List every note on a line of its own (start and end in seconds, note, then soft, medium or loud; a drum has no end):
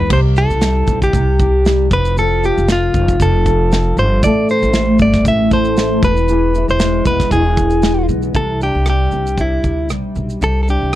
0.00 0.16 G#3 medium
0.00 0.16 B3 medium
0.00 0.16 E4 medium
0.00 0.10 G#4 medium
0.00 0.12 B4 medium
0.10 0.47 C2 loud
0.10 1.12 C3 medium
0.10 1.38 G4 medium
0.10 0.20 C5 loud
0.10 kick loud
0.10 crash medium
0.36 1.96 E4 medium
0.36 0.99 A4 medium
0.36 shaker medium
0.50 0.85 C2 medium
0.50 shaker soft
0.61 1.65 G3 medium
0.61 snare loud
0.61 shaker medium
0.87 1.11 B1 medium
0.87 2.69 C4 medium
0.87 kick medium
0.87 shaker medium
1.02 1.88 G4 medium
1.02 kick medium
1.02 shaker medium
1.13 1.87 C2 loud
1.13 1.96 C3 medium
1.13 kick medium
1.13 shaker medium
1.39 1.97 G4 medium
1.39 kick medium
1.39 shaker soft
1.65 1.90 G3 medium
1.65 snare loud
1.65 shaker medium
1.91 2.53 F1 medium
1.91 2.16 F3 medium
1.91 2.18 B4 medium
1.91 kick loud
1.91 shaker soft
2.05 shaker soft
2.17 3.20 F3 medium
2.17 3.46 A4 medium
2.17 2.44 A4 medium
2.17 shaker medium
2.43 4.29 F4 medium
2.43 2.68 G4 medium
2.43 shaker medium
2.58 2.91 F1 medium
2.58 shaker medium
2.68 2.95 C4 medium
2.68 3.23 F4 medium
2.68 snare loud
2.68 shaker medium
2.94 3.18 F1 medium
2.94 3.72 C4 medium
2.94 kick medium
2.94 shaker medium
3.08 kick medium
3.08 shaker medium
3.20 3.93 F1 loud
3.20 4.29 F3 medium
3.20 3.99 A4 medium
3.20 kick medium
3.20 shaker medium
3.46 4.23 A4 medium
3.46 kick medium
3.46 shaker soft
3.72 3.98 C4 medium
3.72 snare loud
3.72 shaker medium
3.97 4.21 G1 loud
3.97 4.29 C4 medium
3.97 4.24 C5 medium
3.97 shaker soft
4.23 4.60 A1 loud
4.23 5.25 A2 medium
4.23 5.51 A4 medium
4.23 4.47 D5 loud
4.23 kick loud
4.23 shaker medium
4.49 6.55 E4 medium
4.49 4.98 C5 loud
4.49 shaker medium
4.62 4.97 A1 loud
4.62 shaker soft
4.73 5.78 A3 medium
4.73 snare loud
4.73 shaker medium
4.98 5.23 G1 loud
4.98 6.10 C4 medium
4.98 5.25 D5 medium
4.98 kick medium
4.98 shaker medium
5.13 kick medium
5.13 snare soft
5.13 shaker medium
5.25 5.99 A1 loud
5.25 6.09 A2 medium
5.25 5.53 E5 loud
5.25 kick medium
5.25 shaker medium
5.51 6.09 A4 medium
5.51 6.04 C5 medium
5.51 kick medium
5.51 shaker soft
5.65 shaker medium
5.77 6.09 A3 medium
5.77 snare loud
5.77 shaker medium
6.03 6.65 E1 loud
6.03 6.29 E3 medium
6.03 6.65 B4 medium
6.03 kick loud
6.03 shaker soft
6.17 shaker medium
6.28 7.31 E3 medium
6.28 7.56 G#4 medium
6.28 shaker medium
6.54 8.61 E4 medium
6.54 shaker medium
6.68 7.03 E1 medium
6.68 7.07 C5 loud
6.68 shaker medium
6.80 7.82 G#3 medium
6.80 snare loud
6.80 shaker medium
7.05 7.29 E1 medium
7.05 8.09 B3 medium
7.05 7.30 B4 medium
7.05 kick medium
7.05 shaker medium
7.20 kick medium
7.20 snare soft
7.20 shaker medium
7.31 8.05 E1 medium
7.31 8.64 E3 medium
7.31 8.05 G#4 medium
7.31 kick medium
7.31 shaker medium
7.57 8.40 G#4 medium
7.57 kick medium
7.57 shaker medium
7.70 shaker medium
7.82 8.40 G#3 medium
7.82 snare loud
7.82 shaker medium
8.09 8.33 B1 loud
8.09 8.41 B3 medium
8.09 shaker soft
8.22 shaker soft
8.34 8.71 C2 medium
8.34 9.37 C3 medium
8.34 8.62 A4 medium
8.34 kick medium
8.34 shaker medium
8.61 10.67 D4 soft
8.61 8.89 G4 medium
8.61 shaker soft
8.75 9.09 C2 medium
8.86 9.90 G3 medium
8.86 cross-stick loud
8.86 shaker medium
8.90 9.41 G4 medium
9.12 9.60 C2 medium
9.12 10.16 C4 soft
9.12 shaker soft
9.26 shaker soft
9.38 10.40 C3 medium
9.38 9.88 E4 medium
9.38 kick medium
9.38 shaker medium
9.64 9.90 D2 medium
9.64 10.95 G4 medium
9.64 kick medium
9.64 shaker soft
9.89 10.14 B1 medium
9.89 10.93 G3 medium
9.89 cross-stick medium
9.89 shaker medium
10.15 10.40 B1 medium
10.15 10.95 C4 soft
10.15 shaker soft
10.29 shaker soft
10.41 10.78 C2 medium
10.41 10.95 C3 medium
10.41 10.61 A4 medium
10.41 shaker medium
10.63 10.68 A4 medium
10.68 10.95 D4 soft
10.68 10.95 G4 medium
10.68 shaker soft
10.82 10.95 C2 medium